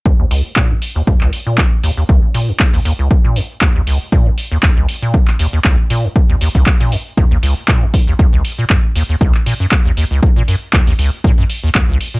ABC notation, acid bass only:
X:1
M:4/4
L:1/16
Q:"Swing 16ths" 1/4=118
K:Ebphr
V:1 name="Acid bass" clef=bass
E,, E,, D,, z B,, F,, z E,, E,, D,, z B,, F,, z E,, E,, | D,, z B,, F,, z E,, E,, D,, z B,, F,, z E,, E,, D,, z | B,, F,, z E,, E,, D,, z B,, F,, z E,, E,, D,, z B,, F,, | z E,, E,, D,, z B,, F,, z E,, E,, D,, z B,, F,, z E,, |
E,, D,, z B,, G,, z E,, E,, D,, z B,, G,, z E,, E,, D,, | z B,, G,, z E,, E,, D,, z B,, G,, z E,, E,, D,, z B,, |]